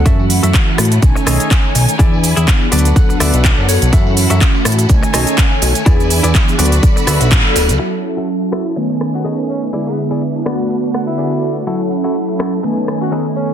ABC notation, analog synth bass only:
X:1
M:4/4
L:1/16
Q:"Swing 16ths" 1/4=124
K:F#m
V:1 name="Analog synth bass" clef=bass
F,,3 F,, z2 A,,2 B,,, z B,,, z3 B,,, z | E,,3 E,, z2 D,,2 z D,, D,, B,,,2 F,,2 B,,, | F,,3 F,, z2 A,,2 B,,, z B,,, z3 B,,, z | E,,3 E,, z2 D,,2 z D,, D,, B,,, A,,, z D,,, D,, |
z16 | z16 | z16 |]